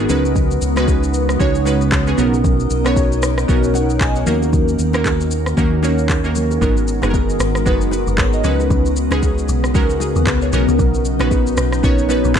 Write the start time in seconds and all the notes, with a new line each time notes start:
Already playing: F#4 A#4
0.00 G#3 B3 D#4 F#4 G#4
0.09 C#2 C#3 G#3 B3 C#4 D#4 F#4 B4, low conga, shaker
0.25 high bongo, shaker
0.36 kick, low conga, shaker
0.51 shaker
0.62 C#2, shaker
0.76 G#3 C#4 D#4 F#4 B4, cross-stick, low bongo, shaker
0.88 kick, high bongo, shaker
1.03 shaker
1.14 shaker
1.29 cross-stick, shaker
1.39 C#2 G#3 C#4 D#4 F#4 C#5, kick, low conga, shaker
1.55 shaker
1.65 G#3 C#4 D#4 F#4 B4, low bongo, shaker
1.81 shaker
1.92 kick, clap, high bongo, shaker
2.07 G#3 C#4 D#4 F#4 G#4, shaker
2.18 B1 B3 C#4 D#4 F#4 A#4, low conga, shaker
2.34 high bongo, shaker
2.44 kick, low conga, shaker
2.60 shaker
2.70 B1, shaker
2.85 B3 C#4 D#4 F#4 C#5, cross-stick, low bongo, shaker
2.96 kick, high bongo, shaker
3.12 shaker
3.22 cross-stick, shaker
3.38 cross-stick, shaker
3.48 B1 B3 C#4 D#4 F#4 A#4, kick, low conga, shaker
3.64 shaker
3.74 C#5 F#5, low bongo, shaker
3.90 shaker
4.01 D#5 G#5, kick, clap, high bongo, shaker
4.16 C#5 F#5, shaker
4.26 D#2 D#3 A#3 C#4 D#4 F#4 A#4, low conga, shaker
4.42 high bongo, shaker
4.53 kick, low conga, shaker
4.68 shaker
4.79 D#2, shaker
4.93 A#3 C#4 D#4 F#4 A#4, cross-stick, low bongo, shaker
5.05 kick, clap, high bongo, shaker
5.21 shaker
5.31 shaker
5.46 cross-stick, shaker
5.57 D#2 A#3 C#4 D#4 F#4 A#4, kick, low conga, shaker
5.83 A#3 C#4 D#4 F#4 C#5, low bongo, shaker
5.98 shaker
6.09 kick, clap, high bongo, shaker
6.24 A#3 C#4 D#4 F#4 A#4, shaker
6.35 low bongo, low conga, shaker
6.51 high bongo, shaker
6.61 G#1 G#3 B3 D#4 F#4 A#4, kick, low conga, shaker
6.77 shaker
6.88 shaker
7.02 F#1 G#3 B3 D#4 F#4 G#4, cross-stick, low bongo, shaker
7.10 A#4, kick, high bongo, shaker
7.29 shaker
7.40 G#1, cross-stick, shaker
7.55 cross-stick, shaker
7.66 F#1 G#3 B3 D#4 F#4 B4, kick, low conga, shaker
7.81 shaker
7.91 F#4 B4, low bongo, shaker
8.07 F#1, shaker
8.18 G#1 G#4 C#5, kick, clap, high bongo, shaker
8.33 A#4 D#5, shaker
8.44 C#2 C#3 G#3 B3 C#4 D#4 F#4 B4, low conga, shaker
8.60 high bongo, shaker
8.70 C#2, kick, low conga, shaker
8.86 shaker
8.96 shaker
9.11 C#2 G#3 C#4 D#4 F#4 G#4, cross-stick, low bongo, shaker
9.23 kick, high bongo, shaker
9.38 shaker
9.48 B1, shaker
9.64 cross-stick, shaker
9.74 C#2 G#3 C#4 D#4 F#4 A#4, kick, low conga, shaker
9.90 shaker
10.00 D#4 G#4, low bongo, shaker
10.16 D#2, shaker
10.27 C#2 F#4 B4, kick, clap, high bongo, shaker
10.42 G#4 C#5, shaker
10.53 B1 F#3 B3 C#4 D#4 F#4 A#4, low conga, shaker
10.68 C#2, high bongo, shaker
10.79 B1, kick, low conga, shaker
10.94 shaker
11.05 shaker
11.19 A#1 B3 C#4 D#4 F#4 B4, cross-stick, low bongo, shaker
11.31 kick, high bongo, shaker
11.47 shaker
11.57 B1, cross-stick, shaker
11.72 cross-stick, shaker
11.83 A#1 B3 C#4 D#4 F#4 C#5, kick, low conga, shaker
11.98 shaker
12.09 B3 C#4 D#4 F#4 B4, low bongo, shaker
12.24 A#1, shaker
12.35 B1, kick, clap, high bongo, shaker